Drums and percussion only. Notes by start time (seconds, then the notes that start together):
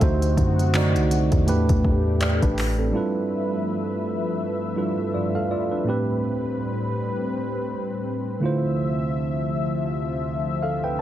0.01 kick, closed hi-hat
0.22 closed hi-hat
0.37 kick, closed hi-hat
0.59 closed hi-hat
0.74 clap, closed hi-hat
0.96 closed hi-hat
1.11 closed hi-hat
1.32 kick, closed hi-hat
1.48 closed hi-hat
1.69 kick, closed hi-hat
1.85 kick
2.21 clap, closed hi-hat
2.42 kick, closed hi-hat
2.58 clap, open hi-hat